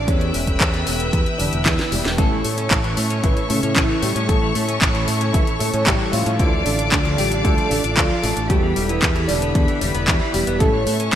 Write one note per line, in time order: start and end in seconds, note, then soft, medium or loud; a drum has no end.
0.07 0.30 E2 loud
0.07 1.36 E3 medium
0.07 1.36 B3 medium
0.07 0.89 C#4 medium
0.07 1.36 E4 medium
0.07 1.36 G4 medium
0.07 1.36 A4 loud
0.07 2.16 B4 medium
0.07 2.16 E5 medium
0.07 2.16 G5 medium
0.07 2.16 E6 medium
0.07 kick loud
0.07 closed hi-hat medium
0.21 closed hi-hat soft
0.34 0.57 E1 medium
0.34 open hi-hat loud
0.47 kick medium
0.47 closed hi-hat medium
0.60 0.83 E2 loud
0.60 kick loud
0.60 clap loud
0.60 closed hi-hat medium
0.74 closed hi-hat soft
0.85 1.09 E1 medium
0.85 1.87 B3 medium
0.85 open hi-hat loud
1.00 closed hi-hat medium
1.13 1.24 E2 medium
1.13 kick loud
1.13 closed hi-hat medium
1.26 closed hi-hat soft
1.38 1.51 E1 medium
1.38 1.64 D3 medium
1.38 1.76 E3 loud
1.38 1.76 B3 medium
1.38 1.66 D4 medium
1.38 1.76 E4 medium
1.38 1.76 G4 medium
1.38 1.76 B4 loud
1.38 open hi-hat loud
1.53 1.64 E1 medium
1.53 closed hi-hat medium
1.65 1.77 E2 loud
1.65 1.91 E3 medium
1.65 1.90 E4 medium
1.65 kick loud
1.65 snare medium
1.65 clap loud
1.65 closed hi-hat medium
1.79 2.15 E3 medium
1.79 2.15 B3 medium
1.79 2.15 E4 medium
1.79 2.15 G4 medium
1.79 2.15 B4 medium
1.79 snare medium
1.79 closed hi-hat soft
1.91 2.03 E1 medium
1.91 2.17 G3 medium
1.91 2.19 G4 medium
1.91 open hi-hat loud
2.05 2.16 E1 loud
2.05 snare medium
2.05 closed hi-hat medium
2.17 2.41 A1 loud
2.17 3.73 A2 loud
2.17 2.28 C#3 medium
2.17 3.20 A3 medium
2.17 3.73 C#4 medium
2.17 3.73 E4 medium
2.17 3.26 A4 loud
2.17 3.73 A4 medium
2.17 8.46 A4 medium
2.17 3.73 C#5 loud
2.17 6.35 C#5 medium
2.17 6.36 E5 medium
2.17 6.36 C#6 medium
2.17 kick loud
2.17 closed hi-hat medium
2.31 2.41 E3 medium
2.45 2.67 A2 medium
2.45 2.54 A3 medium
2.45 open hi-hat loud
2.58 2.67 C#4 medium
2.58 closed hi-hat medium
2.71 2.93 A1 loud
2.71 2.77 C#3 medium
2.71 kick loud
2.71 clap loud
2.71 closed hi-hat medium
2.84 2.97 E3 medium
2.84 closed hi-hat soft
2.97 3.20 A2 medium
2.97 3.07 A3 medium
2.97 open hi-hat loud
3.10 3.20 C#4 medium
3.10 closed hi-hat medium
3.22 3.35 A1 medium
3.22 3.33 C#3 medium
3.22 3.49 E3 medium
3.22 3.50 E4 medium
3.22 kick loud
3.22 closed hi-hat medium
3.37 3.46 E3 medium
3.37 closed hi-hat soft
3.49 3.61 A2 medium
3.49 3.75 C#3 medium
3.49 3.60 A3 medium
3.49 3.74 C#4 medium
3.49 open hi-hat loud
3.63 3.74 A2 medium
3.63 3.73 C#4 medium
3.63 closed hi-hat medium
3.75 3.87 A1 medium
3.75 3.94 A2 medium
3.75 3.82 C#3 medium
3.75 4.01 E3 medium
3.75 3.94 C#4 medium
3.75 4.03 E4 medium
3.75 3.94 E4 medium
3.75 3.94 A4 medium
3.75 3.94 C#5 medium
3.75 kick loud
3.75 clap loud
3.75 closed hi-hat medium
3.89 4.02 E3 medium
4.01 4.14 A2 loud
4.01 4.28 G3 medium
4.01 4.12 A3 medium
4.01 4.29 G4 medium
4.01 open hi-hat loud
4.16 4.27 A2 medium
4.16 4.25 C#4 medium
4.16 closed hi-hat medium
4.28 4.51 A1 loud
4.28 5.57 A2 medium
4.28 4.38 C#3 medium
4.28 5.31 A3 medium
4.28 5.57 C#4 medium
4.28 5.57 E4 medium
4.28 5.37 A4 loud
4.28 5.57 A4 medium
4.28 5.57 C#5 loud
4.28 kick loud
4.28 closed hi-hat medium
4.42 4.52 E3 medium
4.55 4.78 A2 medium
4.55 4.65 A3 medium
4.55 open hi-hat loud
4.68 4.78 C#4 medium
4.68 closed hi-hat medium
4.81 5.04 A1 loud
4.81 4.87 C#3 medium
4.81 kick loud
4.81 clap loud
4.81 closed hi-hat medium
4.95 5.07 E3 medium
4.95 closed hi-hat soft
5.08 5.30 A2 medium
5.08 5.17 A3 medium
5.08 open hi-hat loud
5.21 5.31 C#4 medium
5.21 closed hi-hat medium
5.33 5.45 A1 loud
5.33 5.44 C#3 medium
5.33 5.41 E3 medium
5.33 5.39 E4 loud
5.33 kick loud
5.33 closed hi-hat medium
5.47 5.57 E3 medium
5.47 closed hi-hat soft
5.59 5.97 A2 loud
5.59 5.72 A2 medium
5.59 5.70 A3 medium
5.59 5.85 A3 medium
5.59 5.97 C#4 medium
5.59 5.97 E4 medium
5.59 5.87 A4 medium
5.59 5.97 A4 medium
5.59 5.97 C#5 loud
5.59 open hi-hat loud
5.74 5.85 A2 medium
5.74 5.83 C#4 medium
5.74 closed hi-hat medium
5.85 5.98 A1 medium
5.85 5.93 C#3 medium
5.85 6.12 G3 medium
5.85 6.13 G4 loud
5.85 kick loud
5.85 clap loud
5.85 closed hi-hat medium
6.00 6.36 A2 medium
6.00 6.12 E3 medium
6.00 6.36 C#4 medium
6.00 6.36 E4 medium
6.00 6.36 A4 medium
6.00 6.36 C#5 medium
6.12 6.24 A2 medium
6.12 6.38 F3 medium
6.12 6.23 A3 medium
6.12 6.40 F4 medium
6.12 open hi-hat loud
6.26 6.37 A2 loud
6.26 6.36 C#4 medium
6.26 closed hi-hat medium
6.38 6.62 D2 loud
6.38 6.49 D3 medium
6.38 7.94 D3 loud
6.38 6.64 E3 medium
6.38 7.94 D4 medium
6.38 6.63 E4 loud
6.38 7.94 F4 medium
6.38 7.94 A4 medium
6.38 7.94 D5 loud
6.38 8.48 D5 medium
6.38 8.48 F5 medium
6.38 8.48 D6 medium
6.38 kick loud
6.38 closed hi-hat medium
6.52 6.62 F3 medium
6.64 6.88 A1 medium
6.64 6.91 D3 medium
6.64 6.75 A3 medium
6.64 6.89 D4 medium
6.64 open hi-hat loud
6.79 6.88 D4 medium
6.79 closed hi-hat medium
6.91 7.14 D2 loud
6.91 6.98 D3 medium
6.91 7.17 D3 medium
6.91 7.18 D4 medium
6.91 kick loud
6.91 clap loud
6.91 closed hi-hat medium
7.05 7.18 F3 medium
7.05 closed hi-hat soft
7.17 7.41 A1 medium
7.17 7.43 G3 medium
7.17 7.28 A3 medium
7.17 7.42 G4 loud
7.17 open hi-hat loud
7.31 7.41 D4 medium
7.31 closed hi-hat medium
7.43 7.56 D2 medium
7.43 7.54 D3 medium
7.43 7.70 A3 medium
7.43 7.71 A4 loud
7.43 kick loud
7.43 closed hi-hat medium
7.57 7.67 F3 medium
7.57 closed hi-hat soft
7.70 7.82 A1 medium
7.70 7.96 D3 medium
7.70 7.81 A3 medium
7.70 7.97 D4 medium
7.70 open hi-hat loud
7.84 7.95 A1 medium
7.84 7.94 D4 medium
7.84 closed hi-hat medium
7.96 8.08 D2 medium
7.96 8.15 D3 medium
7.96 8.03 D3 medium
7.96 8.22 F3 medium
7.96 8.15 D4 medium
7.96 8.21 F4 loud
7.96 8.15 F4 medium
7.96 8.15 A4 medium
7.96 8.15 D5 medium
7.96 kick loud
7.96 clap loud
7.96 closed hi-hat medium
8.10 8.23 F3 medium
8.22 8.35 A1 loud
8.22 8.33 A3 medium
8.22 8.49 A3 medium
8.22 8.50 A4 loud
8.22 open hi-hat loud
8.37 8.48 A1 medium
8.37 8.46 D4 medium
8.37 closed hi-hat medium
8.49 8.72 E2 loud
8.49 8.59 B2 medium
8.49 9.78 E3 medium
8.49 8.87 G3 medium
8.49 9.78 B3 medium
8.49 9.78 E4 medium
8.49 8.90 G4 loud
8.49 9.78 G4 medium
8.49 10.58 G4 medium
8.49 9.78 A4 loud
8.49 10.58 B4 medium
8.49 11.15 E5 medium
8.49 10.58 B5 medium
8.49 kick loud
8.49 closed hi-hat medium
8.63 8.73 E3 medium
8.76 8.99 E1 medium
8.76 8.86 G3 medium
8.76 open hi-hat loud
8.88 9.27 E3 medium
8.88 8.99 B3 medium
8.88 9.25 E4 loud
8.88 closed hi-hat medium
9.02 9.25 E2 loud
9.02 9.08 B2 medium
9.02 kick loud
9.02 clap loud
9.02 closed hi-hat medium
9.16 9.28 E3 medium
9.16 closed hi-hat soft
9.28 9.51 E1 medium
9.28 9.78 D3 medium
9.28 9.39 G3 medium
9.28 9.77 D4 loud
9.28 open hi-hat loud
9.42 9.52 B3 medium
9.42 closed hi-hat medium
9.55 9.66 E2 loud
9.55 9.65 B2 medium
9.55 kick loud
9.55 closed hi-hat medium
9.68 9.78 E3 medium
9.68 closed hi-hat soft
9.80 9.93 E1 medium
9.80 10.06 D3 medium
9.80 10.18 E3 loud
9.80 9.91 G3 medium
9.80 10.18 B3 medium
9.80 10.08 D4 medium
9.80 10.18 E4 medium
9.80 10.18 G4 medium
9.80 10.18 B4 loud
9.80 open hi-hat loud
9.95 10.06 E1 medium
9.95 10.04 B3 medium
9.95 closed hi-hat medium
10.06 10.19 E2 medium
10.06 10.14 B2 medium
10.06 10.33 E3 medium
10.06 10.32 E4 medium
10.06 kick loud
10.06 clap loud
10.06 closed hi-hat medium
10.21 10.57 E3 medium
10.21 10.34 E3 medium
10.21 10.57 B3 medium
10.21 10.57 E4 medium
10.21 10.57 G4 medium
10.21 10.57 B4 medium
10.33 10.45 E1 medium
10.33 10.44 G3 medium
10.33 10.59 G3 medium
10.33 10.61 G4 loud
10.33 open hi-hat loud
10.47 10.58 E1 medium
10.47 10.57 B3 medium
10.47 closed hi-hat medium
10.59 10.83 A1 loud
10.59 11.15 A2 loud
10.59 10.70 C#3 medium
10.59 11.15 A3 medium
10.59 11.15 C#4 medium
10.59 11.15 E4 medium
10.59 11.15 A4 loud
10.59 11.15 A4 medium
10.59 11.15 C#5 medium
10.59 11.15 C#5 loud
10.59 11.15 C#6 medium
10.59 kick loud
10.59 closed hi-hat medium
10.74 10.83 E3 medium
10.87 11.09 A2 medium
10.87 10.96 A3 medium
10.87 open hi-hat loud
11.00 11.10 C#4 medium
11.00 closed hi-hat medium